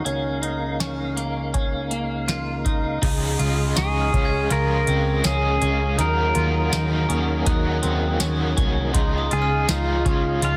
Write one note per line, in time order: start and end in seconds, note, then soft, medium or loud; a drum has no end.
0.00 2.98 F5 soft
0.05 2.99 C#2 medium
0.05 2.99 C#3 medium
0.05 2.99 A#3 soft
0.05 0.42 C#4 medium
0.05 2.99 D#4 soft
0.05 closed hi-hat medium
0.42 0.79 D#4 medium
0.42 closed hi-hat soft
0.80 1.17 C#4 medium
0.80 snare medium
0.80 closed hi-hat medium
1.17 1.54 A#3 medium
1.17 closed hi-hat soft
1.54 1.91 C#4 medium
1.54 kick medium
1.54 closed hi-hat medium
1.91 2.28 A#3 medium
1.91 closed hi-hat soft
2.28 2.65 F4 medium
2.28 snare medium
2.28 closed hi-hat medium
2.65 3.01 D#4 medium
2.65 kick medium
2.65 closed hi-hat soft
3.02 3.35 C#2 loud
3.02 3.39 C#3 medium
3.02 5.96 C#3 medium
3.02 3.40 F3 medium
3.02 5.96 G#3 medium
3.02 3.40 G#3 medium
3.02 3.40 C#4 medium
3.02 3.39 D#4 medium
3.02 3.37 F4 medium
3.02 10.57 G#4 medium
3.02 kick loud
3.02 closed hi-hat medium
3.02 crash loud
3.38 3.72 C#2 loud
3.38 3.77 C#4 medium
3.38 3.76 F4 medium
3.38 closed hi-hat soft
3.43 3.76 G#3 soft
3.75 4.09 C#2 loud
3.75 4.13 C#3 medium
3.75 4.14 F3 medium
3.75 4.14 G#3 medium
3.75 4.13 C#4 medium
3.75 4.13 D#4 medium
3.75 4.11 F4 medium
3.75 4.52 G#4 medium
3.75 6.32 C#6 medium
3.75 snare loud
3.75 closed hi-hat medium
3.75 tambourine medium
4.01 6.53 F6 soft
4.12 4.46 C#2 medium
4.12 4.50 C#4 medium
4.12 4.51 C#4 soft
4.12 4.50 F4 medium
4.12 kick medium
4.12 closed hi-hat soft
4.17 4.50 G#3 soft
4.25 6.75 G#6 medium
4.49 4.83 C#2 loud
4.49 4.87 F3 medium
4.49 4.88 G#3 medium
4.49 4.88 C#4 medium
4.49 4.88 F4 medium
4.49 5.26 A#4 loud
4.49 closed hi-hat medium
4.54 4.85 F4 medium
4.87 5.20 C#2 loud
4.87 5.24 C4 medium
4.87 5.25 C#4 soft
4.87 5.24 F4 medium
4.87 closed hi-hat soft
4.91 5.24 G#3 soft
5.23 5.57 C#2 loud
5.23 5.61 C#3 medium
5.23 5.62 F3 medium
5.23 5.62 G#3 medium
5.23 5.60 C#4 medium
5.23 5.62 C#4 medium
5.23 5.60 F4 medium
5.23 6.00 G#4 loud
5.23 snare medium
5.23 closed hi-hat medium
5.23 tambourine medium
5.61 5.94 C#2 medium
5.61 5.98 C#4 medium
5.61 6.00 C#4 medium
5.61 5.98 F4 medium
5.61 closed hi-hat medium
5.65 5.99 G#3 soft
5.98 6.31 D#2 loud
5.98 8.92 D#3 medium
5.98 6.36 D#3 medium
5.98 8.92 F#3 medium
5.98 8.92 A#3 medium
5.98 6.36 A#3 medium
5.98 6.37 C#4 medium
5.98 10.57 D#4 medium
5.98 6.36 D#4 medium
5.98 6.34 F#4 medium
5.98 7.44 A#4 medium
5.98 closed hi-hat medium
6.35 6.68 D#2 loud
6.35 6.73 C#4 medium
6.35 6.72 F4 medium
6.35 6.73 F#4 medium
6.35 closed hi-hat soft
6.40 6.72 A#3 soft
6.72 7.05 D#2 loud
6.72 7.09 D#3 medium
6.72 7.10 A#3 medium
6.72 7.11 C#4 medium
6.72 7.08 D#4 medium
6.72 7.08 F#4 medium
6.72 snare loud
6.72 closed hi-hat medium
6.72 tambourine medium
7.09 7.42 D#2 medium
7.09 7.46 C#4 medium
7.09 7.48 C#4 medium
7.09 7.46 F#4 medium
7.09 closed hi-hat soft
7.14 7.46 A#3 medium
7.46 7.79 D#2 loud
7.46 7.83 D#3 medium
7.46 7.84 A#3 medium
7.46 7.84 C#4 medium
7.46 7.82 D#4 medium
7.46 9.28 F#6 medium
7.46 kick loud
7.46 closed hi-hat medium
7.50 7.82 F#4 medium
7.82 8.16 D#2 loud
7.82 8.19 C4 medium
7.82 8.20 C#4 medium
7.82 8.20 F#4 medium
7.82 closed hi-hat medium
7.87 8.19 A#3 medium
8.19 8.53 D#2 loud
8.19 8.57 D#3 medium
8.19 8.58 A#3 loud
8.19 8.56 C#4 medium
8.19 8.57 C#4 medium
8.19 8.55 F#4 loud
8.19 snare medium
8.19 closed hi-hat medium
8.19 tambourine medium
8.56 8.90 C2 medium
8.56 8.93 C#4 medium
8.56 8.95 C#4 medium
8.56 8.94 F#4 medium
8.56 kick loud
8.56 closed hi-hat medium
8.60 8.95 A#3 medium
8.93 9.27 C#2 loud
8.93 9.31 C#3 medium
8.93 9.32 F3 medium
8.93 10.57 G#3 medium
8.93 9.32 G#3 medium
8.93 9.32 C#4 medium
8.93 9.31 D#4 medium
8.93 9.29 F4 loud
8.93 10.57 C6 medium
8.93 kick loud
8.93 closed hi-hat medium
9.18 10.57 D#6 medium
9.31 9.65 C#2 loud
9.31 9.69 C#4 soft
9.31 9.68 F4 medium
9.31 9.69 F4 medium
9.31 9.71 G#4 medium
9.31 closed hi-hat soft
9.35 9.68 G#3 soft
9.42 10.57 F6 medium
9.67 10.02 C#2 loud
9.67 10.05 C#3 medium
9.67 10.06 F3 medium
9.67 10.06 G#3 medium
9.67 10.06 C#4 medium
9.67 10.05 D#4 medium
9.67 10.46 F4 medium
9.67 10.03 F4 medium
9.67 snare loud
9.67 closed hi-hat medium
9.67 tambourine medium
10.04 10.39 C#2 loud
10.04 10.43 C#4 medium
10.04 10.44 C#4 soft
10.04 10.42 F4 medium
10.04 kick medium
10.04 closed hi-hat soft
10.09 10.42 G#3 soft
10.42 10.57 C#2 loud
10.42 10.57 F3 medium
10.42 10.57 G#3 medium
10.42 10.57 C#4 medium
10.42 10.57 F4 medium
10.42 10.57 F5 loud
10.42 closed hi-hat medium
10.46 10.57 F4 medium